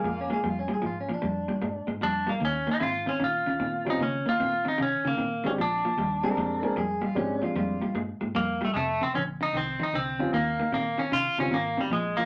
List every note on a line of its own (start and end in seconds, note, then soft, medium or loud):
0.00 0.27 F2 medium
0.00 0.40 A#3 medium
0.04 0.28 A#2 medium
0.04 0.28 G#3 medium
0.09 0.19 F4 medium
0.21 0.32 C#4 medium
0.30 0.42 A#2 medium
0.30 0.42 G#3 medium
0.30 0.47 G#4 medium
0.43 0.68 F2 medium
0.43 0.67 A#2 medium
0.43 0.67 G3 medium
0.43 0.58 F4 medium
0.59 0.71 C#4 medium
0.68 0.81 A#2 medium
0.68 0.81 G3 medium
0.73 0.85 G#4 medium
0.82 1.07 G#2 medium
0.82 1.06 A#2 medium
0.82 1.06 F3 medium
0.86 0.98 F4 medium
1.00 1.11 C#4 medium
1.09 1.21 A#2 medium
1.09 1.21 F3 medium
1.14 1.88 D4 medium
1.22 1.47 F2 medium
1.22 1.46 A#2 medium
1.22 1.46 G3 medium
1.48 1.60 A#2 medium
1.48 1.61 G3 medium
1.62 1.78 G2 medium
1.62 1.85 A#2 medium
1.62 1.86 G#3 medium
1.87 1.96 G#2 medium
1.87 2.00 A#2 medium
1.87 2.00 G#3 medium
2.01 2.26 F2 medium
2.01 2.25 A#2 medium
2.01 2.25 G3 medium
2.01 2.29 D4 medium
2.27 2.39 A#2 medium
2.27 2.40 G3 medium
2.27 2.42 A#3 medium
2.40 2.66 D#2 medium
2.40 2.64 D#3 medium
2.40 2.64 A#3 medium
2.45 2.70 C#4 medium
2.67 2.79 D#3 medium
2.67 2.80 A#3 medium
2.71 2.79 D#4 medium
2.80 3.05 G#2 medium
2.80 3.04 D#3 medium
2.80 3.04 C4 medium
2.80 2.82 E4 medium
2.80 3.08 F4 medium
3.06 3.18 D#3 medium
3.06 3.19 C4 medium
3.06 3.22 C#4 medium
3.20 3.44 A#2 medium
3.20 3.43 D#3 medium
3.20 3.44 C#4 medium
3.24 3.90 F4 medium
3.46 3.59 D#3 medium
3.46 3.59 C#4 medium
3.60 3.84 A#2 medium
3.60 3.83 D#3 medium
3.60 3.83 C4 medium
3.85 3.99 D#3 medium
3.85 3.98 G3 medium
3.85 3.98 C4 medium
3.85 3.99 C4 medium
3.85 3.98 C#4 medium
3.85 3.99 F4 medium
3.90 4.02 D#4 medium
3.99 4.23 C#3 medium
3.99 4.23 D#3 medium
3.99 4.23 A#3 medium
3.99 4.28 C#4 medium
4.26 4.38 D#3 medium
4.26 4.38 A#3 medium
4.26 4.68 F4 loud
4.40 4.64 A#2 medium
4.40 4.63 D#3 medium
4.40 4.63 C4 loud
4.65 4.77 D#3 medium
4.65 4.78 C4 medium
4.65 4.81 D#4 medium
4.78 4.95 C3 medium
4.78 5.02 D#3 medium
4.78 5.02 C#4 medium
4.82 5.07 C#4 medium
5.05 5.13 C#3 medium
5.05 5.16 D#3 medium
5.05 5.47 A#3 medium
5.05 5.17 C#4 medium
5.17 5.43 A#2 medium
5.17 5.41 D#3 medium
5.17 5.42 C4 medium
5.44 5.56 D#3 medium
5.44 5.57 G#3 medium
5.44 5.57 C4 medium
5.44 5.51 C#4 medium
5.44 5.58 D4 medium
5.44 5.58 G4 medium
5.58 5.82 A#1 medium
5.58 5.82 A#2 medium
5.58 5.82 F3 medium
5.58 6.75 D4 medium
5.85 5.96 A#2 medium
5.85 5.97 F3 medium
5.97 6.22 D#2 medium
5.97 6.21 A#2 medium
5.97 6.22 G3 medium
6.23 6.36 A#2 medium
6.23 6.36 G3 medium
6.23 6.61 G#3 medium
6.23 6.61 C4 medium
6.23 6.61 D4 medium
6.23 6.61 G4 medium
6.23 6.65 A#4 medium
6.37 6.61 F2 medium
6.37 6.61 A#2 medium
6.37 6.61 G#3 medium
6.63 6.75 A#2 medium
6.63 6.75 G#3 medium
6.63 6.76 G#3 medium
6.63 6.76 C4 medium
6.63 6.76 D4 medium
6.63 6.76 G#4 medium
6.63 6.76 A#4 medium
6.76 7.01 F2 medium
6.76 7.00 A#2 medium
6.76 7.00 G3 medium
6.76 7.03 G#4 medium
7.01 7.15 A#2 medium
7.01 7.15 G3 medium
7.01 7.16 F4 medium
7.15 7.40 G#2 medium
7.15 7.40 A#2 medium
7.15 7.40 F3 medium
7.15 7.76 G#3 medium
7.15 7.77 C4 medium
7.15 7.43 C#4 medium
7.15 7.77 D4 medium
7.15 7.77 G4 medium
7.42 7.55 A#2 medium
7.42 7.55 F3 medium
7.42 7.55 F4 medium
7.55 7.80 F2 medium
7.55 7.79 A#2 medium
7.55 7.80 G3 medium
7.55 7.95 F4 medium
7.81 7.94 A#2 medium
7.81 7.95 G3 medium
7.94 8.11 G2 medium
7.94 8.19 A#2 medium
7.94 8.19 G#3 medium
8.21 8.30 G#2 medium
8.21 8.34 A#2 medium
8.21 8.34 G#3 medium
8.35 8.60 F2 medium
8.35 8.59 A#2 medium
8.35 8.59 G3 medium
8.35 8.63 A#3 medium
8.61 8.74 A#2 medium
8.61 8.74 G3 medium
8.61 8.73 A3 medium
8.74 8.99 F1 medium
8.74 8.99 F2 medium
8.74 8.99 C3 medium
8.74 8.76 G#3 medium
8.74 9.03 A3 medium
9.01 9.14 F2 medium
9.01 9.14 C3 medium
9.01 9.15 C4 medium
9.14 9.39 A#1 medium
9.14 9.38 F2 medium
9.14 9.39 D3 medium
9.14 9.22 C#4 medium
9.41 9.53 F2 medium
9.41 9.53 D3 medium
9.41 9.56 D#4 medium
9.53 9.78 C2 medium
9.53 9.78 F2 medium
9.53 9.78 D#3 medium
9.53 9.83 C4 medium
9.80 9.92 F2 medium
9.80 9.93 D#3 medium
9.80 9.96 D#4 medium
9.93 10.18 C2 medium
9.93 10.18 F2 medium
9.93 10.18 D3 medium
9.93 10.33 C4 loud
10.19 10.32 F2 medium
10.19 10.33 D3 medium
10.19 10.32 G3 medium
10.19 10.32 C4 medium
10.19 10.32 C#4 medium
10.19 10.32 F4 medium
10.33 10.57 D#2 medium
10.33 10.57 D#3 medium
10.33 10.57 A#3 medium
10.33 10.73 A#3 medium
10.60 10.71 D#3 medium
10.60 10.72 A#3 medium
10.72 10.97 A#2 medium
10.72 10.96 D#3 medium
10.72 11.01 A#3 medium
10.72 10.96 C4 medium
10.98 11.10 D#3 medium
10.98 11.11 C4 medium
10.98 11.13 C#4 medium
11.12 11.28 C3 medium
11.12 11.36 D#3 medium
11.12 11.36 C#4 medium
11.12 11.38 F4 medium
11.38 11.47 C#3 medium
11.38 11.50 D#3 medium
11.38 11.51 G3 medium
11.38 11.51 C4 medium
11.38 11.51 C#4 medium
11.38 11.52 C#4 medium
11.38 11.53 C#4 medium
11.38 11.52 F4 medium
11.51 11.76 G#1 medium
11.51 11.75 D#3 medium
11.51 11.80 A#3 medium
11.51 11.76 C4 medium
11.77 11.90 D#3 medium
11.77 11.92 G3 medium
11.77 11.91 C4 medium
11.90 12.15 A#1 medium
11.90 12.15 A#2 medium
11.90 12.15 F3 medium
11.90 12.20 G#3 medium
12.17 12.25 A#2 medium
12.17 12.25 F3 medium
12.17 12.25 A#3 medium